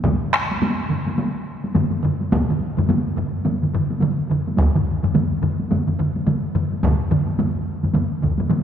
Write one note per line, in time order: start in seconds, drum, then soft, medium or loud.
0.04 taiko medium
0.04 taiko low-mid medium
0.04 taiko mid medium
0.04 taiko high medium
0.33 taiko rim medium
0.51 taiko high soft
0.62 taiko high medium
0.89 taiko low-mid medium
0.89 taiko mid medium
1.07 taiko high medium
1.18 taiko high medium
1.64 taiko high soft
1.75 taiko low-mid medium
1.75 taiko mid medium
1.75 taiko high medium
1.92 taiko high medium
2.04 taiko low-mid medium
2.04 taiko mid medium
2.21 taiko high soft
2.32 taiko medium
2.32 taiko high medium
2.49 taiko low-mid medium
2.49 taiko mid medium
2.78 taiko low-mid medium
2.78 taiko mid medium
2.78 taiko high medium
2.89 taiko low-mid medium
2.89 taiko mid medium
2.89 taiko high medium
3.16 taiko low-mid medium
3.16 taiko mid medium
3.45 taiko low-mid medium
3.45 taiko mid medium
3.45 taiko high medium
3.63 taiko low-mid medium
3.63 taiko mid medium
3.74 taiko low-mid medium
3.74 taiko mid medium
3.90 taiko high medium
4.01 taiko low-mid medium
4.01 taiko mid loud
4.01 taiko high medium
4.30 taiko low-mid medium
4.30 taiko mid medium
4.47 taiko high soft
4.58 taiko loud
4.58 taiko high medium
4.75 taiko low-mid medium
4.75 taiko mid medium
5.03 taiko low-mid medium
5.03 taiko mid medium
5.03 taiko high soft
5.14 taiko low-mid medium
5.14 taiko mid medium
5.14 taiko high medium
5.42 taiko low-mid medium
5.42 taiko mid medium
5.60 taiko high soft
5.71 taiko low-mid medium
5.71 taiko mid medium
5.71 taiko high medium
5.87 taiko low-mid medium
5.87 taiko mid medium
5.99 taiko low-mid medium
5.99 taiko mid medium
6.16 taiko high soft
6.27 taiko low-mid medium
6.27 taiko mid medium
6.27 taiko high medium
6.55 taiko low-mid medium
6.55 taiko mid medium
6.72 taiko high soft
6.83 taiko loud
6.83 taiko low-mid medium
6.83 taiko mid medium
6.83 taiko high soft
7.11 taiko low-mid medium
7.11 taiko mid loud
7.27 taiko high soft
7.39 taiko low-mid medium
7.39 taiko mid medium
7.39 taiko high medium
7.83 taiko low-mid medium
7.83 taiko mid medium
7.83 taiko high soft
7.94 taiko low-mid medium
7.94 taiko mid medium
7.94 taiko high medium
8.22 taiko medium
8.22 taiko low-mid medium
8.22 taiko mid medium
8.38 taiko low-mid medium
8.38 taiko mid medium
8.38 taiko high soft
8.50 taiko low-mid medium
8.50 taiko mid medium
8.50 taiko high medium